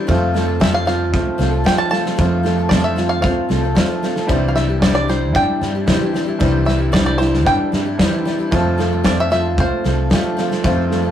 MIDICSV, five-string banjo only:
0, 0, Header, 1, 2, 480
1, 0, Start_track
1, 0, Tempo, 527704
1, 74, Time_signature, 4, 2, 24, 8
1, 10107, End_track
2, 0, Start_track
2, 0, Title_t, "Five-string banjo"
2, 0, Program_c, 0, 105
2, 556, Note_on_c, 0, 76, 89
2, 665, Note_off_c, 0, 76, 0
2, 677, Note_on_c, 0, 77, 95
2, 782, Note_off_c, 0, 77, 0
2, 793, Note_on_c, 0, 77, 78
2, 1014, Note_off_c, 0, 77, 0
2, 1513, Note_on_c, 0, 79, 85
2, 1618, Note_off_c, 0, 79, 0
2, 1622, Note_on_c, 0, 81, 94
2, 1725, Note_off_c, 0, 81, 0
2, 1736, Note_on_c, 0, 81, 81
2, 1964, Note_off_c, 0, 81, 0
2, 2447, Note_on_c, 0, 74, 74
2, 2580, Note_off_c, 0, 74, 0
2, 2584, Note_on_c, 0, 76, 83
2, 2809, Note_off_c, 0, 76, 0
2, 2813, Note_on_c, 0, 77, 84
2, 2919, Note_off_c, 0, 77, 0
2, 2930, Note_on_c, 0, 77, 88
2, 3382, Note_off_c, 0, 77, 0
2, 4079, Note_on_c, 0, 77, 61
2, 4140, Note_off_c, 0, 77, 0
2, 4144, Note_on_c, 0, 76, 72
2, 4380, Note_off_c, 0, 76, 0
2, 4384, Note_on_c, 0, 74, 71
2, 4490, Note_off_c, 0, 74, 0
2, 4501, Note_on_c, 0, 74, 84
2, 4625, Note_off_c, 0, 74, 0
2, 4635, Note_on_c, 0, 72, 74
2, 4874, Note_on_c, 0, 79, 90
2, 4875, Note_off_c, 0, 72, 0
2, 5551, Note_off_c, 0, 79, 0
2, 6060, Note_on_c, 0, 76, 69
2, 6302, Note_on_c, 0, 74, 76
2, 6308, Note_off_c, 0, 76, 0
2, 6414, Note_off_c, 0, 74, 0
2, 6423, Note_on_c, 0, 74, 82
2, 6531, Note_on_c, 0, 72, 78
2, 6534, Note_off_c, 0, 74, 0
2, 6784, Note_off_c, 0, 72, 0
2, 6791, Note_on_c, 0, 79, 91
2, 7471, Note_off_c, 0, 79, 0
2, 8235, Note_on_c, 0, 74, 86
2, 8354, Note_off_c, 0, 74, 0
2, 8370, Note_on_c, 0, 76, 97
2, 8464, Note_off_c, 0, 76, 0
2, 8475, Note_on_c, 0, 76, 92
2, 8718, Note_off_c, 0, 76, 0
2, 8733, Note_on_c, 0, 72, 70
2, 9405, Note_off_c, 0, 72, 0
2, 10107, End_track
0, 0, End_of_file